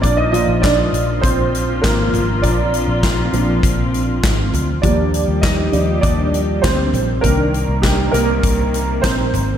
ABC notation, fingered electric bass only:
X:1
M:4/4
L:1/16
Q:1/4=100
K:Bbmix
V:1 name="Fingered electric bass" clef=bass
B,,,3 B,,,3 B,,,2 B,,,4 A,,,2 A,,,2 | B,,,3 B,,,3 B,,,2 B,,,4 A,,,2 D,,2 | E,,3 E,,3 E,,2 E,,4 D,,2 B,,,2 | C,,3 C,,3 C,,2 C,,4 B,,,2 A,,,2 |]